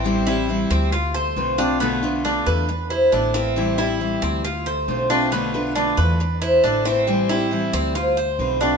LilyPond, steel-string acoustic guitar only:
\new Staff \with { instrumentName = "Steel-string acoustic guitar" } { \time 4/4 \key a \minor \tempo 4 = 137 <e g c' e'>8 <g c' e'>8 <e g c' e'>4 r4 <d a c' f'>8 <a c' f'>8 | <b, d a b f'>8 <d a b f'>8 <d a b f'>4 r4 <d a b e'>8 <a b e'>8 | <e g c' e'>8 <g c' e'>8 <e g c' e'>4 r4 <d a c' f'>8 <a c' f'>8 | <b, d a b f'>8 <d a b f'>8 <d a b f'>4 r4 <d a b e'>8 <a b e'>8 |
<e g c' e'>8 <g c' e'>8 <e g c' e'>4 r4 <d a c' f'>8 <a c' f'>8 | }